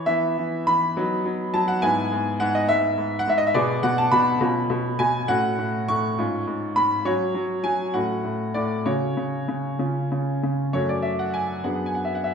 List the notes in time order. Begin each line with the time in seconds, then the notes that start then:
0.06 E3 B3 E4 E5
0.38 E3
0.67 E3 B5
0.97 F#3 B3 D#4
1.26 F#3
1.54 F#3 A5
1.68 F#5
1.82 G#2 B3 E4 G#5
2.12 G#2
2.40 G#2 F#5
2.55 D#5
2.69 G#2 E5
2.98 G#2
3.19 F#5
3.27 G#2 E5
3.38 D#5
3.47 E5
3.54 B2 B3 G#4 D5
3.83 B2 F#5
3.98 A5
4.12 B2 B5
4.41 B2 C#4 F4
4.70 B2
4.99 B2 G#5
5.28 A2 C#4 F#4 F#5
5.59 A2
5.88 A2 C#6
6.18 G#2 C#4 F4
6.47 G#2
6.76 G#2 B5
7.05 F#3 C#4 F#4 C#5
7.35 F#3
7.64 F#3 G#5
7.94 A2 C#4 F#4 F#5
8.24 A2
8.54 A2 D5
8.86 C#3 C#4 F#4 C#5
9.17 C#3
9.48 C#3
9.79 C#3 C#4 F4
10.12 C#3
10.43 C#3
10.73 F#2 A3 C#4 F#4 C#5
10.89 D5
11.02 E5
11.19 F#5
11.34 G#5
11.64 F#2 B3 D4 G#4 F#5
11.86 G#5
11.95 F#5
12.05 E5
12.15 F#5
12.24 E5